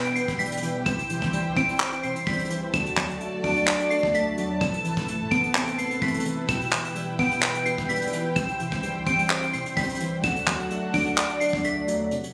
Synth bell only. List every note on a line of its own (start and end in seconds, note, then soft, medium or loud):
0.00 0.13 D7 medium
0.15 0.35 C7 medium
0.39 0.59 B6 medium
0.86 1.52 E7 loud
1.57 2.01 D7 medium
2.03 2.23 C7 medium
2.27 2.46 B6 medium
2.74 3.40 E7 loud
3.44 3.88 D7 medium
3.90 4.10 C7 medium
4.15 4.34 B6 medium
4.61 5.27 E7 loud
5.31 5.75 D7 medium
5.78 5.98 C7 medium
6.02 6.22 B6 medium
6.49 7.15 E7 loud
7.19 7.63 D7 medium
7.66 7.85 C7 medium
7.89 8.09 B6 medium
8.36 9.02 E7 loud
9.07 9.51 D7 medium
9.53 9.73 C7 medium
9.77 9.96 B6 medium
10.24 10.90 E7 loud
10.94 11.38 D7 medium
11.40 11.60 C7 medium
11.65 11.84 B6 medium